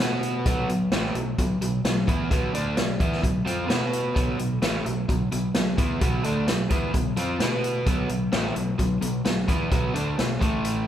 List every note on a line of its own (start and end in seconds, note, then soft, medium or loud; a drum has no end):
0.00 0.43 B2 medium
0.00 0.45 B3 medium
0.00 0.46 F#4 medium
0.00 0.46 B4 medium
0.00 snare loud
0.00 closed hi-hat medium
0.23 closed hi-hat medium
0.46 0.67 B1 medium
0.46 0.68 B2 medium
0.46 0.69 F#3 loud
0.46 0.69 B3 loud
0.46 kick loud
0.46 closed hi-hat medium
0.69 0.90 B1 medium
0.69 0.88 B2 medium
0.69 0.88 F#3 medium
0.69 closed hi-hat medium
0.92 1.13 A1 medium
0.92 1.14 A2 medium
0.92 1.15 E3 medium
0.92 1.15 A3 medium
0.92 snare loud
0.92 closed hi-hat medium
1.15 1.37 B1 medium
1.15 1.34 B2 medium
1.15 1.34 F#3 medium
1.15 closed hi-hat medium
1.38 1.60 B1 medium
1.38 1.57 B2 medium
1.38 1.57 F#3 medium
1.38 kick medium
1.38 closed hi-hat medium
1.61 1.83 B1 medium
1.61 1.80 B2 medium
1.61 1.80 F#3 medium
1.61 closed hi-hat medium
1.84 2.06 B1 medium
1.84 2.03 B2 medium
1.84 2.03 F#3 medium
1.84 snare loud
1.84 closed hi-hat medium
2.07 2.29 E2 medium
2.07 2.30 E3 medium
2.07 2.30 B3 medium
2.07 2.31 E4 medium
2.07 kick loud
2.07 closed hi-hat medium
2.31 2.53 B1 medium
2.31 2.53 B2 medium
2.31 2.54 F#3 medium
2.31 2.54 B3 medium
2.31 kick loud
2.31 closed hi-hat medium
2.54 2.76 D2 medium
2.54 2.76 D3 medium
2.54 2.77 A3 medium
2.54 2.77 D4 loud
2.54 closed hi-hat medium
2.77 2.99 B1 medium
2.77 2.95 B2 medium
2.77 2.96 F#3 medium
2.77 snare loud
2.77 closed hi-hat medium
3.00 3.22 E2 medium
3.00 3.22 E3 medium
3.00 3.23 B3 medium
3.00 3.23 E4 loud
3.00 kick loud
3.00 closed hi-hat medium
3.12 snare soft
3.23 3.45 B1 medium
3.23 3.42 B2 medium
3.23 3.42 F#3 medium
3.23 kick medium
3.23 closed hi-hat medium
3.46 3.68 F2 medium
3.46 3.69 F3 medium
3.46 3.68 C4 medium
3.46 3.69 F4 medium
3.46 closed hi-hat medium
3.68 4.13 B2 medium
3.68 4.14 B3 medium
3.68 4.15 F#4 medium
3.68 4.15 B4 loud
3.68 snare loud
3.68 closed hi-hat medium
3.93 closed hi-hat medium
4.14 4.38 B1 medium
4.14 4.37 B2 medium
4.14 4.38 F#3 medium
4.14 4.38 B3 loud
4.14 kick loud
4.14 closed hi-hat medium
4.38 4.61 B1 medium
4.38 4.57 B2 medium
4.38 4.58 F#3 medium
4.38 closed hi-hat soft
4.62 4.84 A1 medium
4.62 4.85 A2 medium
4.62 4.85 E3 medium
4.62 4.85 A3 medium
4.62 snare medium
4.62 closed hi-hat medium
4.86 5.07 B1 medium
4.86 5.04 B2 medium
4.86 5.04 F#3 medium
4.86 closed hi-hat medium
5.08 5.31 B1 medium
5.08 5.27 B2 medium
5.08 5.27 F#3 medium
5.08 kick medium
5.08 closed hi-hat medium
5.32 5.54 B1 medium
5.32 5.50 B2 medium
5.32 5.50 F#3 medium
5.32 closed hi-hat medium
5.55 5.77 B1 medium
5.55 5.74 B2 medium
5.55 5.74 F#3 medium
5.55 snare loud
5.55 closed hi-hat medium
5.78 6.00 E2 medium
5.78 6.00 E3 medium
5.78 6.01 B3 medium
5.78 6.01 E4 medium
5.78 kick loud
5.78 closed hi-hat medium
6.01 6.23 B1 loud
6.01 6.23 B2 medium
6.01 6.24 F#3 medium
6.01 6.24 B3 medium
6.01 kick loud
6.01 closed hi-hat medium
6.24 6.46 D2 loud
6.24 6.47 D3 medium
6.24 6.47 A3 medium
6.24 6.47 D4 loud
6.24 closed hi-hat medium
6.48 6.69 B1 medium
6.48 6.66 B2 medium
6.48 6.66 F#3 medium
6.48 snare loud
6.48 closed hi-hat medium
6.70 6.92 E2 medium
6.70 6.93 E3 medium
6.70 6.93 B3 medium
6.70 6.94 E4 medium
6.70 kick loud
6.70 closed hi-hat medium
6.94 7.16 B1 medium
6.94 7.12 B2 medium
6.94 7.12 F#3 medium
6.94 kick medium
6.94 closed hi-hat medium
7.16 7.38 F2 loud
7.16 7.39 F3 medium
7.16 7.39 C4 medium
7.16 7.40 F4 medium
7.16 closed hi-hat medium
7.39 7.83 B2 medium
7.39 7.85 B3 medium
7.39 7.86 F#4 medium
7.39 7.86 B4 loud
7.39 snare loud
7.39 closed hi-hat medium
7.64 closed hi-hat medium
7.86 8.08 B1 loud
7.86 8.09 B2 medium
7.86 8.09 F#3 medium
7.86 8.09 B3 loud
7.86 kick loud
7.86 closed hi-hat medium
8.09 8.31 B1 medium
8.09 8.28 B2 medium
8.09 8.28 F#3 medium
8.09 closed hi-hat medium
8.32 8.55 A1 medium
8.32 8.55 A2 medium
8.32 8.55 E3 loud
8.32 8.56 A3 loud
8.32 snare loud
8.32 closed hi-hat medium
8.55 8.78 B1 medium
8.55 8.74 B2 medium
8.55 8.74 F#3 medium
8.55 closed hi-hat medium
8.79 9.01 B1 medium
8.79 8.97 B2 medium
8.79 8.98 F#3 medium
8.79 kick medium
8.79 closed hi-hat medium
9.02 9.24 B1 medium
9.02 9.20 B2 medium
9.02 9.21 F#3 medium
9.02 closed hi-hat medium
9.25 9.47 B1 medium
9.25 9.44 B2 medium
9.25 9.44 F#3 medium
9.25 snare loud
9.25 closed hi-hat medium
9.48 9.70 E2 medium
9.48 9.71 E3 medium
9.48 9.71 B3 medium
9.48 9.71 E4 medium
9.48 kick medium
9.48 closed hi-hat medium
9.71 9.93 B1 medium
9.71 9.94 B2 medium
9.71 9.94 F#3 loud
9.71 9.95 B3 medium
9.71 kick loud
9.71 closed hi-hat medium
9.94 10.16 D2 medium
9.94 10.17 D3 medium
9.94 10.17 A3 loud
9.94 10.18 D4 medium
9.94 closed hi-hat medium
10.17 10.39 B1 medium
10.17 10.36 B2 medium
10.17 10.36 F#3 medium
10.17 snare loud
10.17 closed hi-hat medium
10.40 10.87 A1 medium
10.40 10.87 A2 medium
10.40 10.87 E3 medium
10.40 10.87 A3 loud
10.40 kick medium
10.40 closed hi-hat medium
10.65 closed hi-hat medium